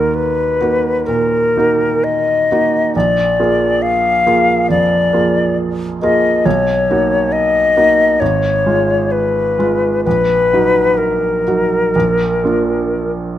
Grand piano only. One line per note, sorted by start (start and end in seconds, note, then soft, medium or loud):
0.00 2.97 D#2 soft
0.00 0.56 A#3 soft
0.00 0.57 D#4 soft
0.00 0.57 F#4 soft
0.61 1.03 A#3 soft
0.61 1.03 D#4 soft
0.61 1.03 F#4 soft
1.08 1.54 A#2 soft
1.57 2.48 A#3 soft
1.57 2.48 D#4 soft
1.57 2.48 F#4 soft
2.52 2.91 A#3 soft
2.52 2.92 D#4 soft
2.52 2.91 F#4 soft
2.96 3.38 A#1 soft
3.39 4.22 A#3 soft
3.39 4.23 F4 soft
3.39 4.23 G#4 soft
4.26 4.66 A#3 soft
4.26 4.66 F4 soft
4.26 4.66 G#4 soft
4.70 5.12 F2 soft
5.13 5.97 A#3 soft
5.13 5.98 F4 soft
5.13 5.98 G#4 soft
6.02 6.42 A#3 soft
6.02 6.42 F4 soft
6.02 6.42 G#4 soft
6.46 6.88 B1 soft
6.91 7.73 A#3 soft
6.91 7.73 D#4 soft
6.91 7.74 F#4 soft
7.77 8.17 A#3 soft
7.77 8.18 D#4 soft
7.77 8.18 F#4 soft
8.21 8.65 G#1 soft
8.66 9.55 G#3 soft
8.66 9.55 F4 soft
9.59 10.02 G#3 soft
9.59 10.02 F4 soft
10.07 10.51 A#1 soft
10.53 11.43 F#3 soft
10.53 11.43 D#4 soft
10.53 11.44 F#4 soft
11.48 11.91 F#3 soft
11.48 11.91 D#4 soft
11.48 11.91 F#4 soft
11.95 12.41 A#1 soft
12.44 13.35 A#3 soft
12.44 13.36 D4 soft
12.44 13.36 F4 soft